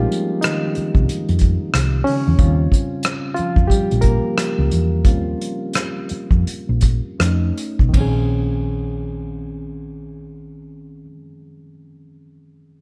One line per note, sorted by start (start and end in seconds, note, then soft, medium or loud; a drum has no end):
0.00 0.40 F3 medium
0.00 2.38 G3 medium
0.00 2.40 G#3 medium
0.00 2.41 A#3 medium
0.00 0.24 C4 soft
0.00 0.25 C#4 soft
0.00 0.25 D#4 medium
0.00 0.44 F4 medium
0.00 2.40 F#4 medium
0.00 2.41 G4 medium
0.00 2.41 G#4 medium
0.00 2.40 A#4 medium
0.12 closed hi-hat medium
0.41 2.10 D#4 medium
0.41 cross-stick loud
0.41 closed hi-hat medium
0.45 2.03 D#3 medium
0.75 muted fretless electric bass stroke soft
0.75 closed hi-hat medium
0.95 1.06 C2 medium
0.95 kick medium
1.09 muted fretless electric bass stroke soft
1.09 closed hi-hat medium
1.29 1.56 F2 medium
1.29 closed hi-hat soft
1.39 kick medium
1.39 closed hi-hat medium
1.74 2.01 C2 medium
1.74 cross-stick medium
1.74 closed hi-hat medium
2.04 2.38 C#4 medium
2.04 open hi-hat medium
2.09 3.34 C#3 medium
2.27 2.37 E2 medium
2.38 2.66 D#2 medium
2.38 3.70 G3 soft
2.38 5.01 C4 soft
2.38 5.01 C#4 soft
2.38 3.33 F4 medium
2.38 kick loud
2.38 closed hi-hat medium
2.72 kick medium
2.72 closed hi-hat medium
3.03 cross-stick loud
3.03 closed hi-hat medium
3.34 3.70 F4 medium
3.34 closed hi-hat medium
3.39 3.69 F3 medium
3.39 muted fretless electric bass stroke soft
3.56 3.68 F2 medium
3.56 kick medium
3.67 4.03 G4 medium
3.67 muted fretless electric bass stroke soft
3.67 kick medium
3.67 closed hi-hat medium
3.72 4.02 G3 medium
3.91 4.19 A#1 medium
3.91 closed hi-hat soft
4.01 7.15 A#3 medium
4.01 7.13 A#4 medium
4.01 kick medium
4.01 closed hi-hat medium
4.38 cross-stick medium
4.38 closed hi-hat medium
4.58 4.69 C#2 medium
4.71 5.05 E2 medium
4.71 closed hi-hat medium
5.05 5.34 D#2 medium
5.05 6.05 G3 soft
5.05 6.06 C4 soft
5.05 6.06 C#4 soft
5.05 6.06 F4 medium
5.05 kick loud
5.05 closed hi-hat medium
5.41 closed hi-hat medium
5.73 cross-stick medium
5.73 closed hi-hat medium
6.09 muted fretless electric bass stroke soft
6.09 closed hi-hat medium
6.31 6.43 F2 medium
6.31 kick medium
6.46 muted fretless electric bass stroke soft
6.46 closed hi-hat medium
6.69 6.99 A#1 medium
6.81 kick medium
6.81 closed hi-hat medium
7.19 7.51 F2 medium
7.19 7.90 A3 soft
7.19 7.91 C#4 soft
7.19 7.91 D#4 medium
7.19 cross-stick medium
7.19 closed hi-hat medium
7.58 closed hi-hat medium
7.79 7.92 B1 medium
7.79 kick medium
7.89 11.02 D#3 medium
7.93 11.07 A#1 medium
7.93 11.06 C4 medium
7.93 kick medium
7.93 ride medium
7.97 11.10 C#4 medium
7.97 11.14 G#4 medium